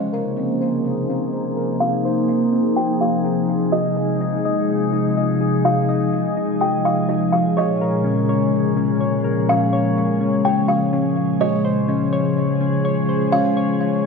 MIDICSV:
0, 0, Header, 1, 4, 480
1, 0, Start_track
1, 0, Key_signature, -4, "major"
1, 0, Tempo, 480000
1, 1809, Time_signature, 4, 2, 24, 8
1, 14062, End_track
2, 0, Start_track
2, 0, Title_t, "Kalimba"
2, 0, Program_c, 0, 108
2, 0, Note_on_c, 0, 75, 94
2, 811, Note_off_c, 0, 75, 0
2, 1804, Note_on_c, 0, 77, 96
2, 2726, Note_off_c, 0, 77, 0
2, 2764, Note_on_c, 0, 79, 81
2, 2995, Note_off_c, 0, 79, 0
2, 3009, Note_on_c, 0, 77, 75
2, 3689, Note_off_c, 0, 77, 0
2, 3725, Note_on_c, 0, 75, 100
2, 4647, Note_off_c, 0, 75, 0
2, 5650, Note_on_c, 0, 77, 91
2, 6570, Note_off_c, 0, 77, 0
2, 6612, Note_on_c, 0, 79, 79
2, 6839, Note_off_c, 0, 79, 0
2, 6852, Note_on_c, 0, 77, 77
2, 7079, Note_off_c, 0, 77, 0
2, 7088, Note_on_c, 0, 75, 73
2, 7316, Note_off_c, 0, 75, 0
2, 7325, Note_on_c, 0, 77, 81
2, 7555, Note_off_c, 0, 77, 0
2, 7581, Note_on_c, 0, 75, 97
2, 8495, Note_off_c, 0, 75, 0
2, 9493, Note_on_c, 0, 77, 94
2, 10411, Note_off_c, 0, 77, 0
2, 10450, Note_on_c, 0, 79, 83
2, 10678, Note_off_c, 0, 79, 0
2, 10684, Note_on_c, 0, 77, 78
2, 11366, Note_off_c, 0, 77, 0
2, 11410, Note_on_c, 0, 75, 99
2, 12330, Note_off_c, 0, 75, 0
2, 13324, Note_on_c, 0, 77, 88
2, 14062, Note_off_c, 0, 77, 0
2, 14062, End_track
3, 0, Start_track
3, 0, Title_t, "Synth keys"
3, 0, Program_c, 1, 88
3, 0, Note_on_c, 1, 72, 93
3, 128, Note_on_c, 1, 70, 79
3, 371, Note_on_c, 1, 60, 69
3, 596, Note_off_c, 1, 72, 0
3, 608, Note_on_c, 1, 72, 93
3, 1084, Note_off_c, 1, 60, 0
3, 1096, Note_on_c, 1, 60, 76
3, 1318, Note_off_c, 1, 72, 0
3, 1330, Note_on_c, 1, 72, 79
3, 1558, Note_off_c, 1, 70, 0
3, 1570, Note_on_c, 1, 70, 74
3, 1796, Note_off_c, 1, 60, 0
3, 1808, Note_on_c, 1, 60, 72
3, 2038, Note_off_c, 1, 72, 0
3, 2050, Note_on_c, 1, 72, 104
3, 2514, Note_off_c, 1, 60, 0
3, 2526, Note_on_c, 1, 60, 81
3, 2756, Note_off_c, 1, 72, 0
3, 2768, Note_on_c, 1, 72, 80
3, 3009, Note_off_c, 1, 70, 0
3, 3235, Note_off_c, 1, 60, 0
3, 3247, Note_on_c, 1, 60, 68
3, 3722, Note_on_c, 1, 75, 96
3, 3728, Note_off_c, 1, 60, 0
3, 3728, Note_off_c, 1, 72, 0
3, 3968, Note_on_c, 1, 68, 76
3, 4210, Note_on_c, 1, 63, 71
3, 4440, Note_off_c, 1, 75, 0
3, 4452, Note_on_c, 1, 75, 100
3, 4916, Note_off_c, 1, 63, 0
3, 4928, Note_on_c, 1, 63, 69
3, 5160, Note_off_c, 1, 75, 0
3, 5172, Note_on_c, 1, 75, 93
3, 5396, Note_off_c, 1, 68, 0
3, 5408, Note_on_c, 1, 68, 71
3, 5637, Note_off_c, 1, 63, 0
3, 5649, Note_on_c, 1, 63, 77
3, 5876, Note_off_c, 1, 75, 0
3, 5888, Note_on_c, 1, 75, 100
3, 6358, Note_off_c, 1, 63, 0
3, 6370, Note_on_c, 1, 63, 73
3, 6595, Note_off_c, 1, 75, 0
3, 6607, Note_on_c, 1, 75, 90
3, 6849, Note_off_c, 1, 68, 0
3, 7078, Note_off_c, 1, 63, 0
3, 7090, Note_on_c, 1, 63, 71
3, 7568, Note_off_c, 1, 75, 0
3, 7568, Note_on_c, 1, 73, 99
3, 7570, Note_off_c, 1, 63, 0
3, 7814, Note_on_c, 1, 70, 80
3, 8045, Note_on_c, 1, 61, 73
3, 8280, Note_off_c, 1, 73, 0
3, 8292, Note_on_c, 1, 73, 94
3, 8755, Note_off_c, 1, 61, 0
3, 8767, Note_on_c, 1, 61, 69
3, 8993, Note_off_c, 1, 73, 0
3, 9005, Note_on_c, 1, 73, 85
3, 9230, Note_off_c, 1, 70, 0
3, 9242, Note_on_c, 1, 70, 75
3, 9481, Note_off_c, 1, 61, 0
3, 9493, Note_on_c, 1, 61, 73
3, 9716, Note_off_c, 1, 73, 0
3, 9728, Note_on_c, 1, 73, 101
3, 10196, Note_off_c, 1, 61, 0
3, 10208, Note_on_c, 1, 61, 73
3, 10437, Note_off_c, 1, 73, 0
3, 10449, Note_on_c, 1, 73, 88
3, 10686, Note_off_c, 1, 70, 0
3, 10917, Note_off_c, 1, 61, 0
3, 10929, Note_on_c, 1, 61, 76
3, 11395, Note_off_c, 1, 73, 0
3, 11407, Note_on_c, 1, 73, 91
3, 11409, Note_off_c, 1, 61, 0
3, 11646, Note_on_c, 1, 72, 81
3, 11884, Note_on_c, 1, 61, 75
3, 12115, Note_off_c, 1, 73, 0
3, 12127, Note_on_c, 1, 73, 95
3, 12596, Note_off_c, 1, 61, 0
3, 12608, Note_on_c, 1, 61, 76
3, 12837, Note_off_c, 1, 73, 0
3, 12849, Note_on_c, 1, 73, 95
3, 13077, Note_off_c, 1, 72, 0
3, 13089, Note_on_c, 1, 72, 74
3, 13316, Note_off_c, 1, 61, 0
3, 13328, Note_on_c, 1, 61, 79
3, 13557, Note_off_c, 1, 73, 0
3, 13569, Note_on_c, 1, 73, 97
3, 14034, Note_off_c, 1, 61, 0
3, 14062, Note_off_c, 1, 72, 0
3, 14062, Note_off_c, 1, 73, 0
3, 14062, End_track
4, 0, Start_track
4, 0, Title_t, "Ambient pad"
4, 0, Program_c, 2, 92
4, 0, Note_on_c, 2, 48, 78
4, 0, Note_on_c, 2, 53, 76
4, 0, Note_on_c, 2, 58, 75
4, 0, Note_on_c, 2, 63, 75
4, 0, Note_on_c, 2, 68, 86
4, 3691, Note_off_c, 2, 58, 0
4, 3691, Note_off_c, 2, 63, 0
4, 3729, Note_on_c, 2, 56, 74
4, 3729, Note_on_c, 2, 63, 75
4, 7529, Note_off_c, 2, 48, 0
4, 7531, Note_off_c, 2, 63, 0
4, 7569, Note_on_c, 2, 49, 73
4, 7570, Note_on_c, 2, 46, 82
4, 11369, Note_off_c, 2, 53, 0
4, 11369, Note_off_c, 2, 68, 0
4, 11371, Note_off_c, 2, 46, 0
4, 11410, Note_on_c, 2, 53, 74
4, 11410, Note_on_c, 2, 68, 89
4, 14062, Note_off_c, 2, 49, 0
4, 14062, Note_off_c, 2, 53, 0
4, 14062, Note_off_c, 2, 56, 0
4, 14062, Note_off_c, 2, 68, 0
4, 14062, End_track
0, 0, End_of_file